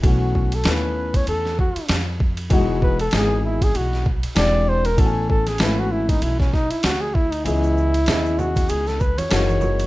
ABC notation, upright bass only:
X:1
M:4/4
L:1/16
Q:"Swing 16ths" 1/4=97
K:E
V:1 name="Upright bass" clef=bass
B,,,4 D,,4 E,,3 z ^E,,4 | E,,,4 G,,,4 B,,,3 z E,,,4 | A,,,4 G,,,4 B,,,3 z =D,,4 | C,,4 D,,4 C,,3 z F,,,4 |]